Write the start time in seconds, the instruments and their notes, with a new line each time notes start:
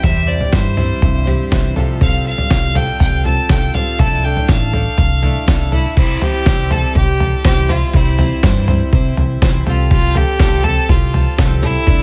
Already playing: steel-string acoustic guitar G3
0.03 picked electric bass E2, twelve-string acoustic guitar C3 E3 G3 C4 E4 C5, steel-string acoustic guitar C3 G4, fiddle E5, kick, floor tom
0.27 twelve-string acoustic guitar G3 C4 E4 C5, fiddle D5
0.41 floor tom
0.53 picked electric bass G2, steel-string acoustic guitar E3 E4, fiddle C5, kick, snare
0.76 steel-string acoustic guitar G3, twelve-string acoustic guitar G3 C4 E4 C5, floor tom
1.02 picked electric bass C2, steel-string acoustic guitar G2 E4, kick, floor tom
1.25 twelve-string acoustic guitar G3 C4 E4 C5, steel-string acoustic guitar G4, floor tom
1.50 picked electric bass C2, steel-string acoustic guitar E3, twelve-string acoustic guitar G3 C4 E4 C5, kick, snare
1.76 picked electric bass C2, steel-string acoustic guitar C3 F3 G3 A4, twelve-string acoustic guitar G3 C4 F4 A4, floor tom
2.00 twelve-string acoustic guitar C3 F3 G3 C4 F4 A4, fiddle F5, kick, floor tom
2.25 twelve-string acoustic guitar G3 C4 F4 A4, fiddle F5
2.38 floor tom
2.50 picked electric bass C2, kick, snare
2.74 twelve-string acoustic guitar G3 C4 F4 A4, fiddle G5, floor tom
3.00 picked electric bass C2, fiddle G5, kick, floor tom
3.24 twelve-string acoustic guitar G3 C4 F4 A4, fiddle A5, floor tom
3.49 picked electric bass C2, twelve-string acoustic guitar G3 C4 F4 A4, fiddle G5, kick, snare
3.74 twelve-string acoustic guitar G3 C4 F4 A4, fiddle F5, floor tom
3.98 picked electric bass C2, twelve-string acoustic guitar C3 F3 A3 D4 E4 A4, fiddle A5, kick, floor tom
4.23 twelve-string acoustic guitar A3 D4 E4 A4, fiddle G5
4.37 floor tom
4.49 picked electric bass A1, fiddle F5, kick, snare
4.73 twelve-string acoustic guitar A3 D4 A4, floor tom
4.98 picked electric bass C2, kick, floor tom
5.22 twelve-string acoustic guitar A3 D4 E4 A4, floor tom
5.46 picked electric bass C2, twelve-string acoustic guitar A3 D4 E4 A4, kick, snare
5.72 twelve-string acoustic guitar A3 D4 E4 A4, fiddle E4, floor tom
5.96 picked electric bass C2, twelve-string acoustic guitar C3 E3 G3 C4 E4 C5, fiddle E4, kick, floor tom, crash
6.21 twelve-string acoustic guitar G3 C4 E4 C5, fiddle G4, floor tom
6.45 picked electric bass C2, twelve-string acoustic guitar C3 E3 G3 C4 E4 C5, kick, snare, floor tom
6.70 twelve-string acoustic guitar G3 C4 E4 C5, fiddle A4, floor tom
6.95 picked electric bass C2, twelve-string acoustic guitar G3 C4 E4 C5, fiddle G4, kick, floor tom
7.20 floor tom
7.44 picked electric bass C2, twelve-string acoustic guitar C3 E3 G3 C4 E4 C5, fiddle G4, kick, snare, floor tom
7.69 twelve-string acoustic guitar G3 C4 E4 C5, fiddle F4, floor tom
7.93 picked electric bass C2, twelve-string acoustic guitar C3 E3 G3 C4 E4 C5, fiddle E4, kick, floor tom
8.18 twelve-string acoustic guitar G3 C4 E4 C5, floor tom
8.43 picked electric bass G2, twelve-string acoustic guitar C3 E3 G3 C4 E4 C5, kick, snare, floor tom
8.67 twelve-string acoustic guitar G3 C4 E4 C5, floor tom
8.92 picked electric bass C3, twelve-string acoustic guitar G3 C4 E4 C5, kick, floor tom
9.17 picked electric bass C2, floor tom
9.42 picked electric bass C2, twelve-string acoustic guitar C3 E3 G3 C4 E4 C5, kick, snare, floor tom
9.66 picked electric bass C2, twelve-string acoustic guitar G3 C4 G4 A4, fiddle F4, floor tom
9.91 twelve-string acoustic guitar C3 F3 G3 C4 G4 A4, fiddle F4, kick, floor tom
10.15 twelve-string acoustic guitar G3 C4 G4 A4, fiddle G4, floor tom
10.39 picked electric bass C2, twelve-string acoustic guitar C3 F3 G3 C4 G4 A4, kick, snare, floor tom
10.63 twelve-string acoustic guitar G3 C4 G4 A4, fiddle A4, floor tom
10.88 picked electric bass C2, twelve-string acoustic guitar G3 C4 G4 A4, fiddle F4, kick, floor tom
11.14 floor tom
11.37 picked electric bass C2, twelve-string acoustic guitar C3 F3 G3 C4 G4 A4, kick, snare, floor tom
11.62 twelve-string acoustic guitar G3 C4 G4 A4, fiddle E4, floor tom
11.87 picked electric bass C2, twelve-string acoustic guitar C3 F3 A3 D4 E4 A4, kick, floor tom